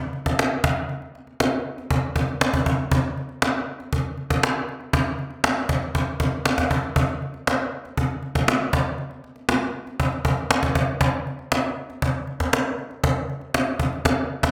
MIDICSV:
0, 0, Header, 1, 2, 480
1, 0, Start_track
1, 0, Tempo, 506329
1, 844, Time_signature, 4, 2, 24, 8
1, 13755, End_track
2, 0, Start_track
2, 0, Title_t, "Cajon"
2, 9, Note_on_c, 9, 38, 29
2, 104, Note_off_c, 9, 38, 0
2, 124, Note_on_c, 9, 38, 39
2, 219, Note_off_c, 9, 38, 0
2, 247, Note_on_c, 9, 36, 84
2, 248, Note_on_c, 9, 38, 35
2, 341, Note_off_c, 9, 36, 0
2, 343, Note_off_c, 9, 38, 0
2, 370, Note_on_c, 9, 38, 106
2, 465, Note_off_c, 9, 38, 0
2, 485, Note_on_c, 9, 38, 30
2, 580, Note_off_c, 9, 38, 0
2, 605, Note_on_c, 9, 36, 117
2, 700, Note_off_c, 9, 36, 0
2, 722, Note_on_c, 9, 38, 28
2, 817, Note_off_c, 9, 38, 0
2, 846, Note_on_c, 9, 38, 59
2, 941, Note_off_c, 9, 38, 0
2, 967, Note_on_c, 9, 38, 25
2, 1061, Note_off_c, 9, 38, 0
2, 1091, Note_on_c, 9, 38, 41
2, 1186, Note_off_c, 9, 38, 0
2, 1205, Note_on_c, 9, 38, 32
2, 1300, Note_off_c, 9, 38, 0
2, 1329, Note_on_c, 9, 38, 107
2, 1424, Note_off_c, 9, 38, 0
2, 1444, Note_on_c, 9, 38, 33
2, 1539, Note_off_c, 9, 38, 0
2, 1688, Note_on_c, 9, 38, 30
2, 1691, Note_off_c, 9, 38, 0
2, 1691, Note_on_c, 9, 38, 36
2, 1786, Note_off_c, 9, 38, 0
2, 1806, Note_on_c, 9, 36, 99
2, 1901, Note_off_c, 9, 36, 0
2, 1926, Note_on_c, 9, 38, 29
2, 2021, Note_off_c, 9, 38, 0
2, 2044, Note_on_c, 9, 36, 94
2, 2139, Note_off_c, 9, 36, 0
2, 2158, Note_on_c, 9, 38, 31
2, 2165, Note_off_c, 9, 38, 0
2, 2165, Note_on_c, 9, 38, 36
2, 2260, Note_off_c, 9, 38, 0
2, 2287, Note_on_c, 9, 38, 114
2, 2381, Note_off_c, 9, 38, 0
2, 2402, Note_on_c, 9, 38, 33
2, 2403, Note_on_c, 9, 36, 103
2, 2497, Note_off_c, 9, 38, 0
2, 2498, Note_off_c, 9, 36, 0
2, 2523, Note_on_c, 9, 36, 97
2, 2618, Note_off_c, 9, 36, 0
2, 2640, Note_on_c, 9, 38, 26
2, 2735, Note_off_c, 9, 38, 0
2, 2763, Note_on_c, 9, 36, 119
2, 2858, Note_off_c, 9, 36, 0
2, 2883, Note_on_c, 9, 38, 28
2, 2978, Note_off_c, 9, 38, 0
2, 3009, Note_on_c, 9, 38, 43
2, 3103, Note_off_c, 9, 38, 0
2, 3119, Note_on_c, 9, 38, 31
2, 3214, Note_off_c, 9, 38, 0
2, 3243, Note_on_c, 9, 38, 107
2, 3338, Note_off_c, 9, 38, 0
2, 3357, Note_on_c, 9, 38, 31
2, 3452, Note_off_c, 9, 38, 0
2, 3602, Note_on_c, 9, 38, 28
2, 3605, Note_off_c, 9, 38, 0
2, 3605, Note_on_c, 9, 38, 35
2, 3700, Note_off_c, 9, 38, 0
2, 3721, Note_on_c, 9, 36, 91
2, 3816, Note_off_c, 9, 36, 0
2, 3838, Note_on_c, 9, 38, 32
2, 3933, Note_off_c, 9, 38, 0
2, 3957, Note_on_c, 9, 38, 39
2, 4052, Note_off_c, 9, 38, 0
2, 4080, Note_on_c, 9, 36, 94
2, 4083, Note_on_c, 9, 38, 38
2, 4175, Note_off_c, 9, 36, 0
2, 4177, Note_off_c, 9, 38, 0
2, 4203, Note_on_c, 9, 38, 109
2, 4298, Note_off_c, 9, 38, 0
2, 4321, Note_on_c, 9, 38, 33
2, 4416, Note_off_c, 9, 38, 0
2, 4444, Note_on_c, 9, 38, 37
2, 4539, Note_off_c, 9, 38, 0
2, 4555, Note_on_c, 9, 38, 27
2, 4649, Note_off_c, 9, 38, 0
2, 4677, Note_on_c, 9, 36, 122
2, 4772, Note_off_c, 9, 36, 0
2, 4796, Note_on_c, 9, 38, 28
2, 4891, Note_off_c, 9, 38, 0
2, 4919, Note_on_c, 9, 38, 41
2, 5014, Note_off_c, 9, 38, 0
2, 5029, Note_on_c, 9, 38, 32
2, 5124, Note_off_c, 9, 38, 0
2, 5156, Note_on_c, 9, 38, 115
2, 5251, Note_off_c, 9, 38, 0
2, 5274, Note_on_c, 9, 38, 33
2, 5368, Note_off_c, 9, 38, 0
2, 5396, Note_on_c, 9, 36, 100
2, 5400, Note_on_c, 9, 38, 40
2, 5491, Note_off_c, 9, 36, 0
2, 5495, Note_off_c, 9, 38, 0
2, 5522, Note_on_c, 9, 38, 29
2, 5525, Note_off_c, 9, 38, 0
2, 5525, Note_on_c, 9, 38, 34
2, 5620, Note_off_c, 9, 38, 0
2, 5639, Note_on_c, 9, 36, 97
2, 5734, Note_off_c, 9, 36, 0
2, 5759, Note_on_c, 9, 38, 29
2, 5854, Note_off_c, 9, 38, 0
2, 5877, Note_on_c, 9, 36, 99
2, 5972, Note_off_c, 9, 36, 0
2, 5992, Note_on_c, 9, 38, 29
2, 6087, Note_off_c, 9, 38, 0
2, 6119, Note_on_c, 9, 38, 113
2, 6214, Note_off_c, 9, 38, 0
2, 6237, Note_on_c, 9, 36, 104
2, 6238, Note_on_c, 9, 38, 34
2, 6332, Note_off_c, 9, 36, 0
2, 6332, Note_off_c, 9, 38, 0
2, 6358, Note_on_c, 9, 36, 93
2, 6453, Note_off_c, 9, 36, 0
2, 6478, Note_on_c, 9, 38, 27
2, 6573, Note_off_c, 9, 38, 0
2, 6598, Note_on_c, 9, 36, 112
2, 6693, Note_off_c, 9, 36, 0
2, 6721, Note_on_c, 9, 38, 29
2, 6816, Note_off_c, 9, 38, 0
2, 6845, Note_on_c, 9, 38, 41
2, 6940, Note_off_c, 9, 38, 0
2, 6958, Note_on_c, 9, 38, 33
2, 7053, Note_off_c, 9, 38, 0
2, 7085, Note_on_c, 9, 38, 109
2, 7180, Note_off_c, 9, 38, 0
2, 7199, Note_on_c, 9, 38, 35
2, 7294, Note_off_c, 9, 38, 0
2, 7443, Note_on_c, 9, 38, 28
2, 7446, Note_off_c, 9, 38, 0
2, 7446, Note_on_c, 9, 38, 34
2, 7540, Note_off_c, 9, 38, 0
2, 7560, Note_on_c, 9, 36, 89
2, 7655, Note_off_c, 9, 36, 0
2, 7681, Note_on_c, 9, 38, 29
2, 7776, Note_off_c, 9, 38, 0
2, 7798, Note_on_c, 9, 38, 40
2, 7892, Note_off_c, 9, 38, 0
2, 7919, Note_on_c, 9, 36, 91
2, 7921, Note_on_c, 9, 38, 35
2, 8013, Note_off_c, 9, 36, 0
2, 8016, Note_off_c, 9, 38, 0
2, 8041, Note_on_c, 9, 38, 117
2, 8136, Note_off_c, 9, 38, 0
2, 8161, Note_on_c, 9, 38, 34
2, 8256, Note_off_c, 9, 38, 0
2, 8277, Note_on_c, 9, 36, 110
2, 8372, Note_off_c, 9, 36, 0
2, 8391, Note_on_c, 9, 38, 27
2, 8486, Note_off_c, 9, 38, 0
2, 8515, Note_on_c, 9, 38, 54
2, 8610, Note_off_c, 9, 38, 0
2, 8634, Note_on_c, 9, 38, 29
2, 8729, Note_off_c, 9, 38, 0
2, 8759, Note_on_c, 9, 38, 43
2, 8854, Note_off_c, 9, 38, 0
2, 8871, Note_on_c, 9, 38, 30
2, 8965, Note_off_c, 9, 38, 0
2, 8994, Note_on_c, 9, 38, 101
2, 9089, Note_off_c, 9, 38, 0
2, 9109, Note_on_c, 9, 38, 31
2, 9204, Note_off_c, 9, 38, 0
2, 9357, Note_on_c, 9, 38, 27
2, 9360, Note_off_c, 9, 38, 0
2, 9360, Note_on_c, 9, 38, 33
2, 9455, Note_off_c, 9, 38, 0
2, 9476, Note_on_c, 9, 36, 89
2, 9571, Note_off_c, 9, 36, 0
2, 9597, Note_on_c, 9, 38, 30
2, 9692, Note_off_c, 9, 38, 0
2, 9715, Note_on_c, 9, 36, 96
2, 9810, Note_off_c, 9, 36, 0
2, 9832, Note_on_c, 9, 38, 32
2, 9839, Note_off_c, 9, 38, 0
2, 9839, Note_on_c, 9, 38, 35
2, 9934, Note_off_c, 9, 38, 0
2, 9959, Note_on_c, 9, 38, 123
2, 10054, Note_off_c, 9, 38, 0
2, 10075, Note_on_c, 9, 36, 103
2, 10077, Note_on_c, 9, 38, 31
2, 10169, Note_off_c, 9, 36, 0
2, 10172, Note_off_c, 9, 38, 0
2, 10194, Note_on_c, 9, 36, 105
2, 10289, Note_off_c, 9, 36, 0
2, 10314, Note_on_c, 9, 38, 29
2, 10409, Note_off_c, 9, 38, 0
2, 10435, Note_on_c, 9, 36, 115
2, 10529, Note_off_c, 9, 36, 0
2, 10558, Note_on_c, 9, 38, 29
2, 10653, Note_off_c, 9, 38, 0
2, 10684, Note_on_c, 9, 38, 43
2, 10778, Note_off_c, 9, 38, 0
2, 10797, Note_on_c, 9, 38, 33
2, 10891, Note_off_c, 9, 38, 0
2, 10919, Note_on_c, 9, 38, 108
2, 11014, Note_off_c, 9, 38, 0
2, 11033, Note_on_c, 9, 38, 33
2, 11128, Note_off_c, 9, 38, 0
2, 11278, Note_on_c, 9, 38, 28
2, 11281, Note_off_c, 9, 38, 0
2, 11281, Note_on_c, 9, 38, 34
2, 11376, Note_off_c, 9, 38, 0
2, 11397, Note_on_c, 9, 36, 90
2, 11492, Note_off_c, 9, 36, 0
2, 11516, Note_on_c, 9, 38, 30
2, 11611, Note_off_c, 9, 38, 0
2, 11635, Note_on_c, 9, 38, 41
2, 11729, Note_off_c, 9, 38, 0
2, 11757, Note_on_c, 9, 36, 91
2, 11757, Note_on_c, 9, 38, 39
2, 11851, Note_off_c, 9, 36, 0
2, 11852, Note_off_c, 9, 38, 0
2, 11880, Note_on_c, 9, 38, 120
2, 11974, Note_off_c, 9, 38, 0
2, 12000, Note_on_c, 9, 38, 33
2, 12095, Note_off_c, 9, 38, 0
2, 12123, Note_on_c, 9, 38, 40
2, 12218, Note_off_c, 9, 38, 0
2, 12237, Note_on_c, 9, 38, 28
2, 12331, Note_off_c, 9, 38, 0
2, 12358, Note_on_c, 9, 36, 118
2, 12453, Note_off_c, 9, 36, 0
2, 12481, Note_on_c, 9, 38, 29
2, 12576, Note_off_c, 9, 38, 0
2, 12605, Note_on_c, 9, 38, 41
2, 12700, Note_off_c, 9, 38, 0
2, 12716, Note_on_c, 9, 38, 33
2, 12811, Note_off_c, 9, 38, 0
2, 12839, Note_on_c, 9, 38, 118
2, 12934, Note_off_c, 9, 38, 0
2, 12958, Note_on_c, 9, 38, 33
2, 13052, Note_off_c, 9, 38, 0
2, 13077, Note_on_c, 9, 36, 91
2, 13081, Note_on_c, 9, 38, 36
2, 13172, Note_off_c, 9, 36, 0
2, 13176, Note_off_c, 9, 38, 0
2, 13202, Note_on_c, 9, 38, 26
2, 13205, Note_off_c, 9, 38, 0
2, 13205, Note_on_c, 9, 38, 37
2, 13299, Note_off_c, 9, 38, 0
2, 13321, Note_on_c, 9, 36, 103
2, 13325, Note_on_c, 9, 38, 108
2, 13415, Note_off_c, 9, 36, 0
2, 13419, Note_off_c, 9, 38, 0
2, 13682, Note_on_c, 9, 36, 105
2, 13686, Note_on_c, 9, 38, 107
2, 13755, Note_off_c, 9, 36, 0
2, 13755, Note_off_c, 9, 38, 0
2, 13755, End_track
0, 0, End_of_file